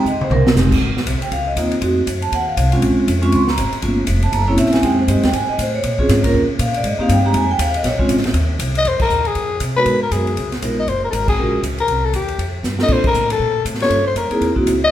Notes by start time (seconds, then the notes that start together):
0.04 C#2 D#5, hi-hat pedal
0.20 C5, muted upright bass stroke, mid tom
0.30 C2 A#4, mid tom
0.47 snare
0.55 F1 G#3 C4 D#4 G4, snare, hi-hat pedal
0.71 kick, crash
0.81 G#1, kick
0.96 muted upright bass stroke, snare
1.06 C2, kick, hi-hat pedal, ride
1.21 G5, muted upright bass stroke, ride
1.31 C#2 F5, kick, ride
1.47 D#5
1.56 D#2 A#3 C4 D#4 F4, kick, hi-hat pedal, ride
1.71 ride
1.81 F2 A3 C4 D#4 F#4, kick, ride
2.06 F#2, kick, hi-hat pedal, ride
2.22 A5, ride
2.32 D#2 F#5, kick, ride
2.49 F5
2.57 C2, kick, hi-hat pedal, ride
2.72 G#3 C4 C#4 F4, ride
2.82 A#1, kick, ride
2.96 muted upright bass stroke
3.07 F2, kick, hi-hat pedal, ride
3.22 G#3 C4 C#4 F4 C#6, ride
3.32 C#2 C6, kick, ride
3.48 A#5, snare
3.57 G#1, kick, hi-hat pedal, ride
3.72 muted upright bass stroke, ride
3.82 G1 A3 A#3 C#4 F4, kick, ride
4.07 F1, kick, hi-hat pedal, ride
4.22 A5, ride
4.32 F#1 A#5, kick, ride
4.47 A#3 C4 C#4 E4 C#5
4.57 A#1 E5, kick, hi-hat pedal, ride
4.66 snare
4.72 G#5, snare, ride
4.83 F2 G#3 C4 D#4 G4 G5, kick, ride
4.99 C5
5.08 G2 G#3 C4 D#4 G4 D#5, kick, hi-hat pedal, ride
5.15 F2
5.23 D#2 G5, snare, ride
5.33 G#2 G#5, kick, ride
5.48 D#5, muted upright bass stroke
5.58 A2 C5, kick, hi-hat pedal, ride
5.75 C#5
5.83 A#2, kick, ride
5.99 C4 C#4 F4 G#4, kick
6.09 G#2, kick, snare, hi-hat pedal, ride
6.24 A#3 C#4 F4 A#4, kick, ride
6.34 D#2, kick
6.48 muted upright bass stroke
6.59 A#2 F5, kick, hi-hat pedal, ride
6.74 D5, ride
6.84 G#2 D#5, kick, ride
6.99 A#3 C4 D#4 G4 F5, muted upright bass stroke
7.09 G2 G5, kick, hi-hat pedal, ride
7.25 G#3 C4 D#4 G4 A#5
7.34 F2 G#5, kick, ride
7.51 G5
7.59 D#2 F5, kick, hi-hat pedal, ride
7.74 D#5, ride
7.83 A#1 C#5, kick, snare, ride
7.99 G#3 C4 C#4 F4, muted upright bass stroke, kick
8.09 G#1, hi-hat pedal, ride
8.17 snare
8.24 snare, ride
8.33 D#2, kick, ride
8.59 C2, kick, hi-hat pedal, ride
8.75 D#5, ride
8.84 F2 C5, kick, ride
8.99 A#4, muted upright bass stroke, kick, crash
9.10 D#2, hi-hat pedal
9.25 G#4, ride
9.35 F2, kick, ride
9.60 C3, kick, hi-hat pedal, ride
9.77 G#3 B3 D#4 F#4 A#4 B4
9.86 G#2, kick, ride
10.03 A#4
10.11 F#2 G#3 B3 D#4 F#4 G#4 A#4, kick, hi-hat pedal, ride
10.27 ride
10.36 C#2, kick, ride
10.52 snare, ride
10.62 A#1 G#3 B3 D#4 F4 A#4, kick, hi-hat pedal, ride
10.79 D#5
10.87 F#1 C5, kick, ride
11.04 A#4
11.11 G#1 A4 A#4, kick, hi-hat pedal, ride
11.28 G#4, kick, crash
11.37 A#1 G#3 C#4 F4 F#4 A#4
11.63 C#2, kick, hi-hat pedal, ride
11.78 A#4, ride
11.88 C2, kick, ride
12.05 A4
12.13 D#2 G4, kick, hi-hat pedal, ride
12.28 ride
12.38 F2, kick, ride
12.63 G2, snare, hi-hat pedal
12.79 A#3 C4 D4 F4 A4, snare
12.83 D#5
12.88 A#2, kick, crash
12.92 C5
13.04 A#4, kick, crash
13.14 A2, hi-hat pedal
13.30 A4, ride
13.39 A#2, kick
13.65 A2, kick, hi-hat pedal, ride
13.74 snare
13.80 A#3 C#4 F4 G4 A4 C#5, snare, ride
13.90 G2, kick, ride
14.07 C5
14.15 F2 A#4, kick, hi-hat pedal, ride
14.30 A#3 C4 D#4 E4 G#4, muted upright bass stroke, ride
14.41 E2, kick, ride
14.55 A#3 C4 D#4 E4 F#4, kick
14.66 C#2, kick, hi-hat pedal, ride
14.84 D#5